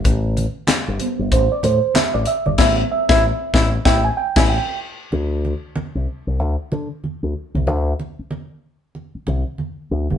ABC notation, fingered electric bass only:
X:1
M:4/4
L:1/16
Q:"Swing 16ths" 1/4=94
K:Gmix
V:1 name="Fingered electric bass" clef=bass
A,,,3 z2 G,,, z G,,, A,,, z A,, z2 A,,, z G,,, | A,,,2 z A,,,2 z A,,,2 A,,,2 z A,,,2 z3 | D,,3 z2 C,, z C,, D,, z D, z2 D,, z C,, | D,,2 z8 C,, z3 D,, G,,, |]